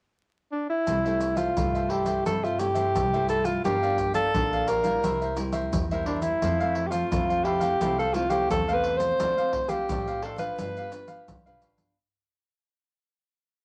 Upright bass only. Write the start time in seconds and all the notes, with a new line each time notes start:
0.87 C2
1.57 C2
2.27 G2
2.96 C2
3.65 G1
4.34 A#1
5.04 C2
5.73 E2
6.42 F2
7.12 F2
7.81 C2
8.51 E2
9.20 D2
9.89 A1
10.59 G1
11.29 D2
11.47 B1
11.61 A1
11.78 G1